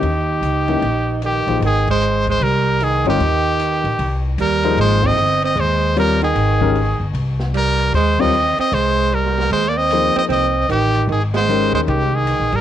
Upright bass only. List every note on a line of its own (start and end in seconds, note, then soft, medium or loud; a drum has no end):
0.02 0.40 D#2 medium
0.41 0.79 C#2 medium
0.81 1.43 A#1 medium
1.46 1.60 A#1 medium
1.60 2.36 G#1 medium
2.40 3.01 C2 medium
3.05 3.18 G1 medium
3.19 3.80 D#2 medium
3.84 3.98 A#1 medium
3.99 4.36 C2 medium
4.38 4.75 D#2 medium
4.77 5.14 G#1 medium
5.17 5.54 G1 medium
5.56 6.31 D#2 medium
6.35 6.96 G#1 medium
7.00 7.13 G1 medium
7.13 7.89 C2 medium
7.93 8.54 D#2 medium
8.58 muted upright bass stroke soft
8.72 9.47 C2 medium
9.51 10.12 D#2 medium
10.16 muted upright bass stroke soft
10.29 10.66 C2 medium
10.69 11.06 A1 medium
11.07 11.69 G#1 medium
11.73 11.87 D#2 medium
11.87 12.36 C2 medium
12.40 12.52 A#1 medium
12.53 12.61 G#1 medium